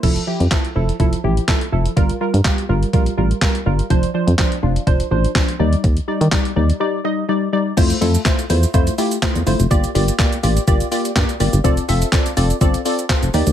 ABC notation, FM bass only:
X:1
M:4/4
L:1/16
Q:1/4=124
K:F
V:1 name="FM bass" clef=bass
F,,,2 z F,, z2 F,,,2 F,,,2 A,,,2 z2 F,,,2 | G,,,2 z G,, z2 G,,,2 B,,,2 A,,,2 z2 G,,,2 | F,,,2 z F,, z2 F,,,2 F,,,2 A,,,2 z2 _E,,2 | _E,,2 z _E, z2 E,,2 z8 |
F,,2 F,,2 z2 E,,2 F,,2 z3 E,, G,,, F,,, | G,,,2 G,,,2 z2 A,,,2 G,,,2 z2 G,, z G,,, G,,, | F,,,2 F,,,2 z2 F,,,2 G,,,2 z3 F,,, _E,, D,, |]